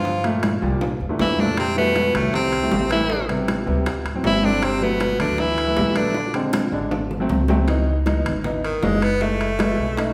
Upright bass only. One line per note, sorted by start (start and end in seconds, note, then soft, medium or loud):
0.00 0.56 G2 medium
0.62 0.98 C2 medium
1.01 1.18 E2 medium
1.20 2.09 F2 medium
2.14 2.68 C2 medium
2.72 3.62 A1 medium
3.67 4.03 D2 loud
4.05 4.23 A1 medium
4.24 5.14 G1 medium
5.20 5.73 D2 medium
5.77 6.66 A#1 medium
6.72 7.26 G#1 medium
7.29 8.19 C#2 medium
8.26 8.79 G#1 medium
8.83 9.73 F#1 medium
9.78 10.13 B1 medium